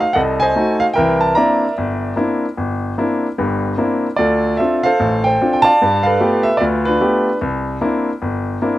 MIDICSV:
0, 0, Header, 1, 2, 480
1, 0, Start_track
1, 0, Tempo, 403226
1, 1136, Time_signature, 4, 2, 24, 8
1, 10458, End_track
2, 0, Start_track
2, 0, Title_t, "Grand piano"
2, 0, Program_c, 0, 0
2, 0, Note_on_c, 0, 69, 56
2, 0, Note_on_c, 0, 72, 57
2, 5, Note_on_c, 0, 77, 81
2, 157, Note_off_c, 0, 69, 0
2, 158, Note_on_c, 0, 78, 88
2, 175, Note_on_c, 0, 69, 61
2, 177, Note_off_c, 0, 77, 0
2, 182, Note_on_c, 0, 75, 62
2, 187, Note_on_c, 0, 36, 68
2, 231, Note_off_c, 0, 78, 0
2, 451, Note_off_c, 0, 72, 0
2, 472, Note_on_c, 0, 80, 91
2, 488, Note_off_c, 0, 75, 0
2, 504, Note_on_c, 0, 72, 66
2, 506, Note_on_c, 0, 75, 66
2, 597, Note_off_c, 0, 36, 0
2, 664, Note_on_c, 0, 57, 55
2, 674, Note_on_c, 0, 63, 48
2, 679, Note_on_c, 0, 66, 59
2, 951, Note_on_c, 0, 77, 93
2, 977, Note_off_c, 0, 80, 0
2, 992, Note_off_c, 0, 57, 0
2, 997, Note_off_c, 0, 63, 0
2, 1000, Note_off_c, 0, 66, 0
2, 1010, Note_off_c, 0, 77, 0
2, 1089, Note_off_c, 0, 69, 0
2, 1098, Note_off_c, 0, 72, 0
2, 1099, Note_off_c, 0, 75, 0
2, 1113, Note_on_c, 0, 79, 86
2, 1138, Note_on_c, 0, 70, 70
2, 1138, Note_on_c, 0, 76, 65
2, 1158, Note_on_c, 0, 36, 64
2, 1163, Note_on_c, 0, 52, 69
2, 1418, Note_off_c, 0, 79, 0
2, 1435, Note_on_c, 0, 81, 83
2, 1564, Note_off_c, 0, 36, 0
2, 1567, Note_off_c, 0, 52, 0
2, 1596, Note_off_c, 0, 81, 0
2, 1608, Note_on_c, 0, 82, 86
2, 1610, Note_off_c, 0, 76, 0
2, 1628, Note_on_c, 0, 58, 53
2, 1628, Note_on_c, 0, 74, 61
2, 1628, Note_on_c, 0, 76, 58
2, 1632, Note_on_c, 0, 60, 51
2, 1634, Note_on_c, 0, 62, 52
2, 1635, Note_on_c, 0, 64, 58
2, 1955, Note_off_c, 0, 58, 0
2, 1957, Note_off_c, 0, 60, 0
2, 1958, Note_off_c, 0, 62, 0
2, 1958, Note_off_c, 0, 64, 0
2, 2051, Note_off_c, 0, 70, 0
2, 2059, Note_off_c, 0, 82, 0
2, 2117, Note_on_c, 0, 31, 69
2, 2524, Note_off_c, 0, 31, 0
2, 2536, Note_off_c, 0, 74, 0
2, 2536, Note_off_c, 0, 76, 0
2, 2571, Note_on_c, 0, 58, 54
2, 2581, Note_on_c, 0, 62, 49
2, 2582, Note_on_c, 0, 60, 46
2, 2584, Note_on_c, 0, 64, 60
2, 2907, Note_off_c, 0, 58, 0
2, 2912, Note_off_c, 0, 60, 0
2, 2912, Note_off_c, 0, 62, 0
2, 2913, Note_off_c, 0, 64, 0
2, 3064, Note_on_c, 0, 31, 66
2, 3478, Note_off_c, 0, 31, 0
2, 3547, Note_on_c, 0, 58, 53
2, 3548, Note_on_c, 0, 60, 46
2, 3553, Note_on_c, 0, 62, 49
2, 3557, Note_on_c, 0, 64, 60
2, 3875, Note_off_c, 0, 58, 0
2, 3875, Note_off_c, 0, 60, 0
2, 3878, Note_off_c, 0, 62, 0
2, 3880, Note_off_c, 0, 64, 0
2, 4028, Note_on_c, 0, 43, 68
2, 4030, Note_on_c, 0, 31, 67
2, 4440, Note_off_c, 0, 43, 0
2, 4441, Note_off_c, 0, 31, 0
2, 4500, Note_on_c, 0, 58, 57
2, 4500, Note_on_c, 0, 60, 51
2, 4502, Note_on_c, 0, 62, 47
2, 4511, Note_on_c, 0, 64, 55
2, 4831, Note_off_c, 0, 58, 0
2, 4831, Note_off_c, 0, 60, 0
2, 4832, Note_off_c, 0, 62, 0
2, 4836, Note_off_c, 0, 64, 0
2, 4958, Note_on_c, 0, 74, 85
2, 4980, Note_on_c, 0, 69, 61
2, 4981, Note_on_c, 0, 65, 60
2, 4984, Note_on_c, 0, 38, 65
2, 5397, Note_off_c, 0, 38, 0
2, 5413, Note_off_c, 0, 74, 0
2, 5442, Note_on_c, 0, 76, 78
2, 5461, Note_off_c, 0, 65, 0
2, 5478, Note_on_c, 0, 60, 52
2, 5478, Note_on_c, 0, 62, 47
2, 5479, Note_on_c, 0, 65, 60
2, 5743, Note_off_c, 0, 76, 0
2, 5755, Note_on_c, 0, 77, 93
2, 5756, Note_off_c, 0, 69, 0
2, 5774, Note_on_c, 0, 69, 67
2, 5782, Note_on_c, 0, 72, 67
2, 5800, Note_off_c, 0, 60, 0
2, 5800, Note_off_c, 0, 62, 0
2, 5800, Note_off_c, 0, 65, 0
2, 5951, Note_on_c, 0, 33, 72
2, 6237, Note_on_c, 0, 79, 90
2, 6251, Note_off_c, 0, 72, 0
2, 6258, Note_off_c, 0, 77, 0
2, 6269, Note_on_c, 0, 72, 65
2, 6360, Note_off_c, 0, 33, 0
2, 6442, Note_on_c, 0, 62, 47
2, 6443, Note_on_c, 0, 60, 54
2, 6449, Note_on_c, 0, 65, 60
2, 6567, Note_off_c, 0, 79, 0
2, 6585, Note_on_c, 0, 79, 73
2, 6685, Note_off_c, 0, 69, 0
2, 6691, Note_on_c, 0, 81, 127
2, 6713, Note_off_c, 0, 79, 0
2, 6721, Note_on_c, 0, 74, 77
2, 6721, Note_on_c, 0, 77, 72
2, 6761, Note_off_c, 0, 62, 0
2, 6762, Note_off_c, 0, 60, 0
2, 6764, Note_off_c, 0, 65, 0
2, 6860, Note_off_c, 0, 72, 0
2, 6926, Note_on_c, 0, 43, 70
2, 7162, Note_off_c, 0, 77, 0
2, 7180, Note_on_c, 0, 77, 88
2, 7206, Note_off_c, 0, 81, 0
2, 7213, Note_on_c, 0, 71, 67
2, 7214, Note_on_c, 0, 69, 62
2, 7327, Note_off_c, 0, 43, 0
2, 7386, Note_on_c, 0, 57, 51
2, 7388, Note_on_c, 0, 59, 51
2, 7390, Note_on_c, 0, 65, 46
2, 7391, Note_on_c, 0, 67, 61
2, 7637, Note_off_c, 0, 74, 0
2, 7657, Note_on_c, 0, 76, 89
2, 7690, Note_off_c, 0, 77, 0
2, 7712, Note_off_c, 0, 57, 0
2, 7713, Note_off_c, 0, 59, 0
2, 7714, Note_off_c, 0, 65, 0
2, 7715, Note_off_c, 0, 67, 0
2, 7824, Note_on_c, 0, 74, 80
2, 7842, Note_off_c, 0, 71, 0
2, 7843, Note_off_c, 0, 76, 0
2, 7860, Note_on_c, 0, 71, 57
2, 7863, Note_on_c, 0, 65, 60
2, 7869, Note_on_c, 0, 38, 71
2, 7898, Note_off_c, 0, 74, 0
2, 8123, Note_off_c, 0, 69, 0
2, 8139, Note_off_c, 0, 71, 0
2, 8157, Note_on_c, 0, 71, 88
2, 8176, Note_off_c, 0, 65, 0
2, 8179, Note_on_c, 0, 62, 53
2, 8194, Note_on_c, 0, 65, 54
2, 8278, Note_off_c, 0, 38, 0
2, 8333, Note_off_c, 0, 65, 0
2, 8343, Note_on_c, 0, 57, 57
2, 8349, Note_on_c, 0, 59, 52
2, 8349, Note_on_c, 0, 67, 60
2, 8351, Note_on_c, 0, 65, 48
2, 8670, Note_off_c, 0, 57, 0
2, 8673, Note_off_c, 0, 59, 0
2, 8673, Note_off_c, 0, 65, 0
2, 8673, Note_off_c, 0, 67, 0
2, 8761, Note_off_c, 0, 71, 0
2, 8773, Note_off_c, 0, 62, 0
2, 8825, Note_on_c, 0, 36, 71
2, 9234, Note_off_c, 0, 36, 0
2, 9300, Note_on_c, 0, 58, 54
2, 9300, Note_on_c, 0, 60, 52
2, 9302, Note_on_c, 0, 62, 51
2, 9305, Note_on_c, 0, 64, 62
2, 9627, Note_off_c, 0, 58, 0
2, 9627, Note_off_c, 0, 60, 0
2, 9628, Note_off_c, 0, 62, 0
2, 9630, Note_off_c, 0, 64, 0
2, 9782, Note_on_c, 0, 31, 73
2, 10191, Note_off_c, 0, 31, 0
2, 10258, Note_on_c, 0, 58, 54
2, 10261, Note_on_c, 0, 62, 50
2, 10264, Note_on_c, 0, 60, 49
2, 10265, Note_on_c, 0, 64, 60
2, 10458, Note_off_c, 0, 58, 0
2, 10458, Note_off_c, 0, 60, 0
2, 10458, Note_off_c, 0, 62, 0
2, 10458, Note_off_c, 0, 64, 0
2, 10458, End_track
0, 0, End_of_file